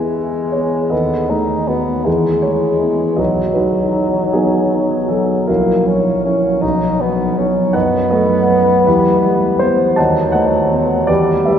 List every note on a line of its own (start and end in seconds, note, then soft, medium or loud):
0.00 0.88 E2 soft
0.00 0.94 G#3 soft
0.00 0.55 B3 soft
0.00 0.16 E4 soft
0.00 0.94 G#4 soft
0.00 0.90 B4 medium
0.00 0.94 E5 medium
0.00 0.94 G#5 medium
0.17 0.77 E4 soft
0.52 0.92 B3 soft
0.52 0.91 C#5 medium
0.90 2.03 D#2 soft
0.90 1.31 B3 soft
0.90 2.02 A4 soft
0.90 2.02 B4 soft
0.90 2.05 D#5 medium
1.30 1.91 A3 soft
1.30 1.69 D#4 soft
1.68 2.02 B3 soft
1.68 2.07 B3 soft
1.68 2.03 F#4 soft
2.04 3.15 E2 soft
2.04 3.18 G#3 soft
2.04 2.41 E4 soft
2.04 2.41 G#4 soft
2.04 2.43 B4 medium
2.42 3.04 G#3 soft
2.42 3.18 C#5 medium
2.81 3.15 B3 soft
2.81 3.15 E4 soft
3.16 5.44 B1 soft
3.16 5.50 F#3 soft
3.16 3.53 F#4 soft
3.16 3.52 B4 soft
3.16 3.56 D#5 medium
3.54 4.19 F#3 soft
3.54 3.94 D#4 soft
3.54 4.30 F#4 soft
3.54 4.33 B4 medium
3.95 4.33 D#4 soft
4.33 4.96 F#3 soft
4.33 4.72 B3 medium
4.33 5.07 D#4 medium
4.33 5.10 G#4 medium
4.73 5.33 B3 soft
5.08 5.48 F#3 soft
5.08 5.47 A4 medium
5.47 6.59 A#1 soft
5.47 5.88 A#3 medium
5.47 6.25 E4 soft
5.47 6.58 F#4 soft
5.47 6.62 A#4 medium
5.87 6.48 F#3 soft
5.87 6.24 C#4 medium
6.25 6.63 C#4 medium
6.25 6.59 C#4 soft
6.25 6.60 E4 soft
6.62 7.71 B1 medium
6.62 7.02 D#4 medium
7.00 7.60 F#3 soft
7.00 7.39 B3 medium
7.38 7.72 B3 soft
7.38 7.75 C#4 medium
7.38 7.72 D#4 soft
7.73 8.84 F#2 medium
7.73 9.71 B3 medium
7.73 8.09 B4 medium
7.73 8.09 D#5 medium
7.73 8.11 F#5 medium
8.11 8.72 A3 soft
8.11 8.83 A4 medium
8.11 8.83 B4 medium
8.11 8.86 D#5 medium
8.50 8.83 B3 soft
8.85 9.94 E2 medium
8.85 9.57 E4 medium
8.85 9.57 G4 medium
8.85 9.60 B4 medium
9.25 9.84 G3 soft
9.59 9.95 B3 soft
9.59 9.97 C5 medium
9.96 11.06 D#2 medium
9.96 11.11 F#3 medium
9.96 10.32 D#5 medium
9.96 10.31 F#5 medium
9.96 10.34 A5 medium
10.32 10.94 A3 soft
10.32 11.05 B4 medium
10.32 11.05 D#5 medium
10.32 11.08 F#5 medium
10.72 11.06 B3 soft
11.07 11.59 E2 medium
11.07 11.59 G3 medium
11.07 11.44 G4 medium
11.07 11.44 B4 medium
11.07 11.46 D5 medium
11.45 11.59 G3 soft
11.45 11.59 G4 soft
11.45 11.59 B4 soft
11.45 11.59 E5 medium